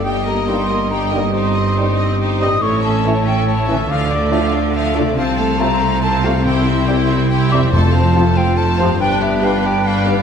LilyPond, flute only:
\new Staff \with { instrumentName = "Flute" } { \time 12/8 \key f \major \tempo 4. = 94 g''8 bes''8 c'''4 bes''8 g''8 c'''2 r8 ees'''8 | cis'''8 a''4 g''8 a''4 f''8 d''8 e''8 f''8 e''4 | f''8 a''8 bes''4 a''8 f''8 c'''2 r8 d'''8 | c'''8 a''4 g''8 a''4 g''8 e''8 f''8 g''8 f''4 | }